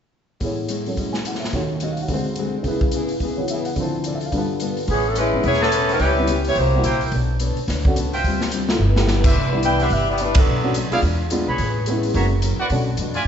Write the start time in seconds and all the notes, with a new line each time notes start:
0.40 A2 E3 G#3 B3 C#4 E4 G#4, kick, open hi-hat
0.45 C#5
0.68 A2 G#3 C#4 E4, closed hi-hat
0.86 F#3 C#4 A4 C#5, open hi-hat
0.96 A2 G#3 C#4 E4, kick, open hi-hat
1.13 G#5, snare
1.25 A2 G#3 C#4 E4 F#5, closed hi-hat
1.35 snare
1.39 E5, open hi-hat
1.44 snare
1.53 D#2 D#3 A3 C#4 F#4 C#5, kick, open hi-hat
1.57 F#4
1.80 D#3 A3 C#4 F#4 D#5, closed hi-hat
1.92 F5
1.97 open hi-hat
2.01 F#5
2.08 D2 D3 G#3 C4 F#4, kick, open hi-hat
2.13 F#4 C5
2.36 D3 G#3 C4, closed hi-hat
2.40 F#4
2.63 C#2 C#3 G#3 B3 E4, kick, open hi-hat
2.68 E4 G#4 B4
2.81 kick
2.91 C#3 B3 E4, closed hi-hat
2.96 G#4
3.08 open hi-hat
3.20 C#3 B3 E4, kick, open hi-hat
3.25 G#4
3.37 E3 B3 F#4 C#5
3.41 C#5
3.48 C#3 B3 E5, closed hi-hat
3.52 E4 G#4
3.65 F#5, open hi-hat
3.76 D2 D3 F3 C4 E4, kick, open hi-hat
3.81 F4 A4 C5
4.04 D3 C4 D5, closed hi-hat
4.08 F4 A4
4.15 E5
4.21 open hi-hat
4.26 F5
4.32 G2 D3 G3 A3 B3 F4, kick, open hi-hat
4.36 F4 A4 B4
4.60 G3 B3 F4 A4, closed hi-hat
4.77 open hi-hat
4.88 A1 E3 A3 B3 C#4 G#4 B4, kick, open hi-hat
5.07 E3 B3 C#4 A4
5.15 G#3 A3 C#4 E4 G#4 B4, closed hi-hat
5.33 G#1 G#3 B3 C#4 E4
5.43 E1 A3 B3 C#4 E4 G#4 C#5, kick, open hi-hat
5.48 B4
5.53 snare
5.62 E3 B3 C#4 A4 B4 C#5 G#5 A5, snare
5.72 A3 C#4 G#4 B4, closed hi-hat
5.89 G3 C#4 E4 B4, open hi-hat
5.99 C#2 C#3 B3 E4 B4 C#5 G5, kick, open hi-hat
6.04 E4 G4
6.18 G3 B3 C#4 E4
6.27 C#3 B3 E4 G4, closed hi-hat
6.44 B3 E4 G4 C#5, open hi-hat
6.55 C2 C3 A#3 E4 G4 C5, kick, open hi-hat
6.59 F#4
6.75 G3 A#3 E4 F#4
6.83 A#1 C3 A#3 E4 A#4 C5 G5, closed hi-hat
6.87 F#4
7.01 open hi-hat
7.12 B1 B3 D4 A4, kick, open hi-hat
7.16 C#5
7.40 B3 D4 A4 C#5, closed hi-hat
7.57 muted upright bass stroke, open hi-hat
7.68 D2 B3 D4 A4 C#5, kick, snare, open hi-hat
7.85 A3 C#4 D4 F#4, kick
7.96 C#2 B3 D4 A4 C#5, closed hi-hat
8.13 F4 C5 E5 G5, open hi-hat
8.24 D2 D3 G3 C4, kick, open hi-hat
8.28 F4
8.41 snare
8.51 D3 G3 C4 F4, closed hi-hat
8.69 A3 B3 E4 F4, snare
8.79 G1 G2 F3 B3 E4
8.96 A3 B3 E4 G4, snare
9.07 G2 F3 B3 E4, snare
9.24 D4 B4 C5 E5, kick, crash
9.34 C2 C3 E3 B3, kick
9.39 D4
9.52 G3 B3 D4 E4
9.63 C3 E3 B3 E4 B4 D5 G5, closed hi-hat
9.67 D4
9.80 D4 G4 B4 C5 E5 F#5, open hi-hat
9.90 G1 C3 E3 B3 D4 G4 B4 E5, kick, open hi-hat
9.95 D4
10.09 B3 E4 G4 D5
10.18 C3 E3 B3 D4 E4 B4, closed hi-hat
10.22 G3 D4
10.35 F#3 B3 D4 A4, kick, ride
10.46 B1 B2 F#3 A3
10.51 D4
10.64 A3 C#4 D4 F#4
10.74 B2 F#3 A3 D4, closed hi-hat
10.91 G#3 B3 D4 E4 F4 G#4 D5 F5, muted upright bass stroke, open hi-hat
11.02 E2 E3 G#3 D4, kick, open hi-hat
11.07 F4
11.30 E3 G#3 B3 D4 F4, closed hi-hat
11.47 B1 G#4 B4 C#5 B5
11.58 A1 A3 C#4 G#4, kick, open hi-hat
11.62 B4
11.86 G#3 A3 B3 C#4 E4 G#4 B4, closed hi-hat
12.03 open hi-hat
12.14 F#1 F#3 G#3 A#3 C#4 E4 F#4 C#5 E5 A#5, kick, open hi-hat
12.18 A#4
12.42 F#3 C#4 E4 A#4, closed hi-hat
12.58 F#4 B4 D5 F#5, muted upright bass stroke
12.70 B1 B2 A3 C#4 D4 F#4, kick, open hi-hat
12.74 F#4
12.97 F2 B2 A3 D4, closed hi-hat
13.02 F#4
13.14 F4 D5 E5 G#5, open hi-hat